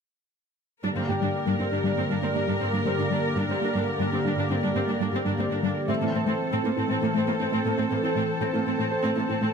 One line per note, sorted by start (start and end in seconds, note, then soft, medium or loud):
0.84 0.89 G2 soft
0.84 5.85 D3 soft
0.84 0.92 G3 medium
0.84 5.85 A#3 soft
0.84 0.89 D4 soft
0.84 5.85 G4 medium
0.84 5.84 A#4 soft
0.84 5.85 D5 soft
0.97 1.02 G2 soft
0.97 1.02 C4 soft
0.97 1.04 D4 soft
1.08 1.14 G2 soft
1.08 1.17 A#3 soft
1.08 1.15 D4 soft
1.08 2.56 G4 soft
1.08 2.56 G5 soft
1.21 1.27 G2 soft
1.21 1.29 G3 medium
1.21 1.27 D4 soft
1.47 1.52 G2 soft
1.47 1.54 G3 medium
1.47 1.53 D4 soft
1.59 1.65 G2 soft
1.59 1.65 C4 soft
1.59 1.67 D4 soft
1.72 1.77 G2 soft
1.72 1.80 D4 soft
1.72 1.78 D4 soft
1.84 1.90 G2 soft
1.84 1.92 G3 medium
1.84 1.90 D4 soft
1.97 2.02 G2 soft
1.97 2.03 C4 soft
1.97 2.05 D4 soft
2.10 2.15 G2 soft
2.10 2.18 G3 medium
2.10 2.15 D4 soft
2.22 2.28 G2 soft
2.22 2.30 A#3 soft
2.22 2.28 C4 soft
2.35 2.41 G2 soft
2.35 2.43 A#3 soft
2.35 2.41 D4 soft
2.35 3.83 D5 soft
2.48 2.53 G2 soft
2.48 2.56 G3 medium
2.48 2.53 D4 soft
2.60 2.66 G2 soft
2.60 2.66 C4 soft
2.60 2.68 G4 soft
2.73 2.78 G2 soft
2.73 2.81 G3 medium
2.73 2.79 D4 soft
2.85 2.91 G2 soft
2.85 2.93 A#3 soft
2.85 2.91 C4 soft
2.98 3.04 G2 soft
2.98 3.06 D4 soft
2.98 3.04 D4 soft
3.11 3.16 G2 soft
3.11 3.19 G3 medium
3.11 3.17 D4 soft
3.36 3.41 G2 soft
3.36 3.44 G3 medium
3.36 3.42 D4 soft
3.49 3.54 G2 soft
3.49 3.55 C4 soft
3.49 3.56 D4 soft
3.61 3.67 G2 soft
3.61 3.69 A#3 soft
3.61 3.68 D4 soft
3.74 3.79 G2 soft
3.74 3.82 G3 medium
3.74 3.80 D4 soft
3.99 4.04 G2 soft
3.99 4.07 G3 medium
3.99 4.05 D4 soft
4.12 4.17 G2 soft
4.12 4.18 C4 soft
4.12 4.20 D4 soft
4.24 4.29 G2 soft
4.24 4.32 D4 medium
4.24 4.30 D4 soft
4.37 4.42 G2 soft
4.37 4.45 G3 medium
4.37 4.43 D4 soft
4.49 4.55 G2 soft
4.49 4.55 C4 soft
4.49 4.58 D4 soft
4.62 4.67 G2 soft
4.62 4.70 G3 medium
4.62 4.68 D4 soft
4.75 4.80 G2 soft
4.75 4.82 A#3 soft
4.75 4.81 C4 soft
4.87 4.93 G2 soft
4.87 4.95 A#3 soft
4.87 4.93 D4 soft
5.00 5.05 G2 soft
5.00 5.08 G3 medium
5.00 5.05 D4 soft
5.12 5.18 G2 soft
5.12 5.19 C4 soft
5.12 5.20 G4 soft
5.25 5.31 G2 soft
5.25 5.33 G3 medium
5.25 5.31 D4 soft
5.38 5.43 G2 soft
5.38 5.46 A#3 soft
5.38 5.44 C4 soft
5.51 5.56 G2 soft
5.51 5.58 D4 soft
5.51 5.56 D4 soft
5.63 5.69 G2 soft
5.63 5.71 G3 medium
5.63 5.69 D4 soft
5.88 5.94 A2 soft
5.88 9.53 E3 medium
5.88 5.96 A3 medium
5.88 5.94 C4 soft
5.88 9.53 C4 medium
5.88 9.53 A4 soft
5.88 9.53 C5 medium
5.88 7.36 E5 soft
5.88 9.53 A5 medium
6.01 6.06 A2 soft
6.01 6.06 A#3 soft
6.01 6.09 E4 soft
6.13 6.19 A2 soft
6.13 6.21 C4 soft
6.13 6.19 C4 soft
6.26 6.32 A2 soft
6.26 6.34 A3 medium
6.26 6.32 C4 soft
6.51 6.57 A2 soft
6.51 6.59 A3 medium
6.51 6.57 C4 soft
6.64 6.70 A2 soft
6.64 6.70 A#3 soft
6.64 6.71 E4 soft
6.77 6.82 A2 soft
6.77 6.82 C4 soft
6.77 6.84 E4 medium
6.89 6.95 A2 soft
6.89 6.97 A3 medium
6.89 6.95 C4 soft
7.02 7.07 A2 soft
7.02 7.08 A#3 soft
7.02 7.09 E4 soft
7.14 7.20 A2 medium
7.14 7.22 A3 medium
7.14 7.20 C4 medium
7.27 7.32 A2 soft
7.27 7.32 A#3 soft
7.27 7.35 C4 soft
7.40 7.45 A2 soft
7.40 7.45 C4 soft
7.40 7.47 C4 soft
7.52 7.57 A2 soft
7.52 7.60 A3 medium
7.52 7.58 C4 soft
7.65 7.70 A2 soft
7.65 7.70 A#3 soft
7.65 7.73 A4 soft
7.78 7.83 A2 soft
7.78 7.85 A3 medium
7.78 7.83 C4 soft
7.90 7.95 A2 soft
7.90 7.96 A#3 soft
7.90 7.98 C4 soft
8.03 8.08 A2 soft
8.03 8.09 C4 soft
8.03 8.10 E4 soft
8.15 8.21 A2 medium
8.15 8.23 A3 medium
8.15 8.21 C4 soft
8.41 8.46 A2 medium
8.41 8.48 A3 medium
8.41 8.46 C4 soft
8.53 8.58 A2 soft
8.53 8.59 A#3 soft
8.53 8.61 E4 soft
8.66 8.71 A2 soft
8.66 8.73 C4 soft
8.66 8.72 C4 soft
8.78 8.84 A2 medium
8.78 8.86 A3 medium
8.78 8.85 C4 medium
8.91 9.53 C5 soft
9.04 9.09 A2 medium
9.04 9.11 A3 medium
9.04 9.09 C4 medium
9.16 9.22 A2 soft
9.16 9.23 A#3 soft
9.16 9.24 E4 soft
9.29 9.34 A2 soft
9.29 9.35 C4 soft
9.29 9.36 E4 soft
9.41 9.46 A2 medium
9.41 9.49 A3 medium
9.41 9.47 C4 soft